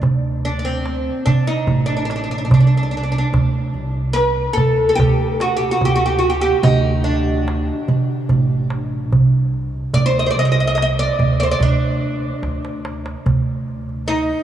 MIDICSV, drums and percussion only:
0, 0, Header, 1, 2, 480
1, 0, Start_track
1, 0, Tempo, 826446
1, 13, Time_signature, 4, 2, 24, 8
1, 8381, End_track
2, 0, Start_track
2, 0, Title_t, "Darbuka"
2, 17, Note_on_c, 9, 64, 88
2, 76, Note_off_c, 9, 64, 0
2, 142, Note_on_c, 9, 62, 24
2, 200, Note_off_c, 9, 62, 0
2, 261, Note_on_c, 9, 62, 21
2, 319, Note_off_c, 9, 62, 0
2, 497, Note_on_c, 9, 63, 61
2, 555, Note_off_c, 9, 63, 0
2, 736, Note_on_c, 9, 64, 82
2, 794, Note_off_c, 9, 64, 0
2, 972, Note_on_c, 9, 64, 80
2, 1030, Note_off_c, 9, 64, 0
2, 1219, Note_on_c, 9, 63, 63
2, 1278, Note_off_c, 9, 63, 0
2, 1458, Note_on_c, 9, 64, 97
2, 1516, Note_off_c, 9, 64, 0
2, 1701, Note_on_c, 9, 62, 23
2, 1759, Note_off_c, 9, 62, 0
2, 1938, Note_on_c, 9, 64, 94
2, 1996, Note_off_c, 9, 64, 0
2, 2061, Note_on_c, 9, 62, 26
2, 2119, Note_off_c, 9, 62, 0
2, 2177, Note_on_c, 9, 62, 23
2, 2235, Note_off_c, 9, 62, 0
2, 2417, Note_on_c, 9, 63, 65
2, 2475, Note_off_c, 9, 63, 0
2, 2656, Note_on_c, 9, 64, 78
2, 2714, Note_off_c, 9, 64, 0
2, 2901, Note_on_c, 9, 64, 95
2, 2960, Note_off_c, 9, 64, 0
2, 3137, Note_on_c, 9, 63, 67
2, 3196, Note_off_c, 9, 63, 0
2, 3376, Note_on_c, 9, 64, 84
2, 3434, Note_off_c, 9, 64, 0
2, 3856, Note_on_c, 9, 64, 100
2, 3914, Note_off_c, 9, 64, 0
2, 4102, Note_on_c, 9, 62, 23
2, 4160, Note_off_c, 9, 62, 0
2, 4343, Note_on_c, 9, 63, 70
2, 4401, Note_off_c, 9, 63, 0
2, 4578, Note_on_c, 9, 64, 71
2, 4636, Note_off_c, 9, 64, 0
2, 4816, Note_on_c, 9, 64, 78
2, 4874, Note_off_c, 9, 64, 0
2, 5055, Note_on_c, 9, 63, 67
2, 5113, Note_off_c, 9, 63, 0
2, 5300, Note_on_c, 9, 64, 80
2, 5358, Note_off_c, 9, 64, 0
2, 5538, Note_on_c, 9, 62, 25
2, 5596, Note_off_c, 9, 62, 0
2, 5771, Note_on_c, 9, 64, 78
2, 5829, Note_off_c, 9, 64, 0
2, 6136, Note_on_c, 9, 62, 29
2, 6194, Note_off_c, 9, 62, 0
2, 6260, Note_on_c, 9, 63, 67
2, 6318, Note_off_c, 9, 63, 0
2, 6502, Note_on_c, 9, 64, 67
2, 6560, Note_off_c, 9, 64, 0
2, 6741, Note_on_c, 9, 64, 86
2, 6799, Note_off_c, 9, 64, 0
2, 7220, Note_on_c, 9, 63, 55
2, 7278, Note_off_c, 9, 63, 0
2, 7345, Note_on_c, 9, 62, 63
2, 7403, Note_off_c, 9, 62, 0
2, 7463, Note_on_c, 9, 63, 74
2, 7521, Note_off_c, 9, 63, 0
2, 7584, Note_on_c, 9, 62, 77
2, 7642, Note_off_c, 9, 62, 0
2, 7703, Note_on_c, 9, 64, 86
2, 7761, Note_off_c, 9, 64, 0
2, 7947, Note_on_c, 9, 62, 22
2, 8005, Note_off_c, 9, 62, 0
2, 8069, Note_on_c, 9, 62, 24
2, 8127, Note_off_c, 9, 62, 0
2, 8184, Note_on_c, 9, 63, 57
2, 8242, Note_off_c, 9, 63, 0
2, 8381, End_track
0, 0, End_of_file